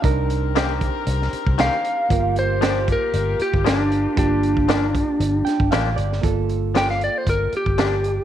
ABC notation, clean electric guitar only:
X:1
M:4/4
L:1/8
Q:"Swing 16ths" 1/4=116
K:Gm
V:1 name="Clean electric guitar"
z2 [E,B,CG] z3 [E,B,CG] z | z2 [F,B,DG] z3 [F,B,DG] z | z2 [F,B,DG] z3 [F,B,DG] z | z2 [F,B,DG] z3 [F,B,DG] z |]